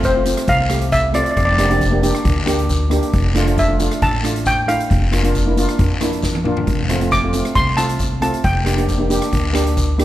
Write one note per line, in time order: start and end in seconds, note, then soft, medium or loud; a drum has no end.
0.00 0.32 F1 medium
0.00 kick medium
0.00 closed hi-hat soft
0.00 short guiro medium
0.05 0.50 C5 medium
0.15 0.21 A3 medium
0.15 0.22 C4 soft
0.15 0.22 F4 medium
0.25 0.52 A3 medium
0.25 0.53 C4 medium
0.25 0.53 F4 medium
0.25 closed hi-hat medium
0.25 short guiro medium
0.37 cross-stick medium
0.37 closed hi-hat medium
0.48 1.21 C2 medium
0.48 0.90 F5 medium
0.48 kick loud
0.48 closed hi-hat medium
0.48 long guiro medium
0.69 0.97 A3 medium
0.69 0.97 C4 medium
0.69 0.97 G4 medium
0.69 cross-stick medium
0.69 closed hi-hat medium
0.69 short guiro medium
0.81 closed hi-hat medium
0.92 1.15 E5 medium
0.92 kick medium
0.92 closed hi-hat medium
0.92 short guiro medium
1.13 1.36 A3 medium
1.13 1.36 C4 medium
1.13 1.37 F4 medium
1.13 1.22 D5 medium
1.13 cross-stick medium
1.13 closed hi-hat medium
1.24 1.30 D5 soft
1.24 closed hi-hat medium
1.31 1.36 D5 medium
1.37 2.09 F1 loud
1.37 1.44 D5 medium
1.37 kick medium
1.37 closed hi-hat soft
1.37 long guiro medium
1.45 1.51 D5 medium
1.53 1.59 D5 soft
1.58 1.65 A#3 medium
1.58 1.65 D4 medium
1.58 1.66 G4 medium
1.58 1.67 D5 medium
1.58 cross-stick medium
1.58 closed hi-hat medium
1.68 1.83 A#3 medium
1.68 1.83 D4 medium
1.68 1.84 G4 medium
1.68 1.75 D5 medium
1.68 closed hi-hat medium
1.81 kick medium
1.81 closed hi-hat soft
1.81 short guiro medium
1.91 1.98 A#3 medium
1.91 1.98 D4 medium
1.91 1.99 G4 medium
2.02 2.29 A#3 medium
2.02 2.30 D4 medium
2.02 2.30 G4 medium
2.02 closed hi-hat medium
2.02 short guiro medium
2.15 cross-stick medium
2.15 closed hi-hat soft
2.25 2.98 D2 medium
2.25 kick loud
2.25 closed hi-hat medium
2.25 long guiro medium
2.46 2.73 A#3 medium
2.46 2.74 D4 medium
2.46 2.74 G4 medium
2.46 cross-stick medium
2.46 closed hi-hat medium
2.46 short guiro medium
2.59 closed hi-hat medium
2.69 kick medium
2.69 closed hi-hat medium
2.69 short guiro medium
2.90 3.13 A#3 medium
2.90 3.13 D4 medium
2.90 3.14 G4 medium
2.90 cross-stick medium
2.90 closed hi-hat medium
3.03 closed hi-hat soft
3.13 3.86 F1 loud
3.13 kick loud
3.13 closed hi-hat soft
3.13 long guiro medium
3.34 3.42 A3 medium
3.34 3.43 D4 medium
3.34 3.43 F4 medium
3.34 cross-stick medium
3.34 closed hi-hat medium
3.46 3.59 A3 medium
3.46 3.60 D4 medium
3.46 3.60 F4 medium
3.46 closed hi-hat medium
3.58 4.04 E5 medium
3.58 kick medium
3.58 closed hi-hat soft
3.58 short guiro medium
3.68 3.75 A3 medium
3.68 3.75 D4 soft
3.68 3.76 F4 medium
3.78 4.06 A3 medium
3.78 4.07 D4 medium
3.78 4.07 F4 medium
3.78 closed hi-hat medium
3.78 short guiro medium
3.91 cross-stick medium
3.91 closed hi-hat soft
4.02 4.75 A1 medium
4.02 4.48 A5 medium
4.02 kick medium
4.02 closed hi-hat medium
4.02 long guiro medium
4.23 4.50 A3 medium
4.23 4.51 D4 medium
4.23 4.51 F4 medium
4.23 cross-stick medium
4.23 closed hi-hat medium
4.23 short guiro medium
4.36 closed hi-hat medium
4.45 4.69 G5 medium
4.45 kick medium
4.45 closed hi-hat medium
4.45 short guiro medium
4.67 4.90 A3 medium
4.67 4.90 D4 medium
4.67 4.91 E4 medium
4.67 5.31 F5 medium
4.67 cross-stick medium
4.67 closed hi-hat medium
4.80 closed hi-hat medium
4.90 5.64 F1 medium
4.90 kick medium
4.90 closed hi-hat medium
4.90 long guiro medium
5.12 5.19 A#3 medium
5.12 5.19 D4 medium
5.12 5.20 F4 medium
5.12 cross-stick medium
5.12 closed hi-hat medium
5.23 5.37 A#3 medium
5.23 5.37 D4 medium
5.23 5.37 F4 medium
5.23 closed hi-hat medium
5.35 kick medium
5.35 closed hi-hat soft
5.35 short guiro medium
5.46 5.53 A#3 medium
5.46 5.53 D4 medium
5.46 5.53 E4 medium
5.57 5.84 A#3 medium
5.57 5.84 D4 medium
5.57 5.85 F4 medium
5.57 closed hi-hat medium
5.57 short guiro medium
5.69 cross-stick medium
5.69 closed hi-hat soft
5.79 6.52 F2 medium
5.79 kick loud
5.79 closed hi-hat medium
5.79 long guiro medium
6.01 6.28 A#3 medium
6.01 6.28 D4 medium
6.01 6.29 E4 medium
6.01 cross-stick medium
6.01 closed hi-hat medium
6.01 short guiro medium
6.13 closed hi-hat medium
6.23 kick medium
6.23 snare soft
6.23 short guiro medium
6.35 high tom medium
6.45 6.67 A#3 medium
6.45 6.68 D4 medium
6.45 6.68 F4 medium
6.45 mid tom medium
6.57 floor tom medium
6.67 7.40 F1 medium
6.67 kick medium
6.67 closed hi-hat soft
6.67 long guiro medium
6.89 6.96 A3 medium
6.89 6.97 C4 medium
6.89 6.97 F4 medium
6.89 cross-stick medium
6.89 closed hi-hat medium
7.00 7.13 A3 medium
7.00 7.14 C4 medium
7.00 7.15 F4 medium
7.00 closed hi-hat medium
7.11 7.57 D6 medium
7.11 kick medium
7.11 closed hi-hat soft
7.11 short guiro medium
7.24 7.30 A3 medium
7.24 7.30 C4 medium
7.24 7.30 F4 medium
7.33 7.61 A3 medium
7.33 7.61 C4 medium
7.33 7.61 F4 medium
7.33 closed hi-hat medium
7.33 short guiro medium
7.45 cross-stick medium
7.45 closed hi-hat soft
7.55 8.29 C2 medium
7.55 7.79 C6 medium
7.55 kick medium
7.55 closed hi-hat medium
7.55 long guiro medium
7.77 8.04 A3 medium
7.77 8.05 C4 medium
7.77 8.05 F4 medium
7.77 8.21 A5 medium
7.77 cross-stick medium
7.77 closed hi-hat medium
7.77 short guiro medium
7.89 closed hi-hat medium
7.99 kick medium
7.99 closed hi-hat medium
7.99 short guiro medium
8.21 8.44 A3 medium
8.21 8.44 C4 medium
8.21 8.45 F4 medium
8.21 8.45 A5 medium
8.21 cross-stick medium
8.21 closed hi-hat medium
8.34 closed hi-hat soft
8.44 9.17 F1 loud
8.44 8.86 G5 medium
8.44 kick medium
8.44 closed hi-hat medium
8.44 long guiro medium
8.64 8.72 A#3 medium
8.64 8.73 D4 medium
8.64 8.73 G4 medium
8.64 cross-stick medium
8.64 closed hi-hat medium
8.76 8.90 A#3 medium
8.76 8.91 D4 medium
8.76 8.91 G4 medium
8.76 closed hi-hat medium
8.89 kick medium
8.89 closed hi-hat medium
8.89 short guiro medium
8.98 9.06 A#3 medium
8.98 9.06 D4 medium
8.98 9.07 G4 medium
9.09 9.37 A#3 medium
9.09 9.37 D4 medium
9.09 9.37 G4 medium
9.09 closed hi-hat medium
9.09 short guiro medium
9.22 cross-stick medium
9.22 closed hi-hat medium
9.33 10.05 D2 medium
9.33 kick medium
9.33 closed hi-hat medium
9.33 long guiro medium
9.53 9.81 A#3 medium
9.53 9.81 D4 medium
9.53 9.81 G4 medium
9.53 cross-stick medium
9.53 closed hi-hat medium
9.53 short guiro medium
9.67 closed hi-hat soft
9.77 kick medium
9.77 closed hi-hat soft
9.77 short guiro medium
9.98 10.05 A#3 medium
9.98 10.05 D4 medium
9.98 10.05 G4 medium
9.98 cross-stick medium
9.98 closed hi-hat medium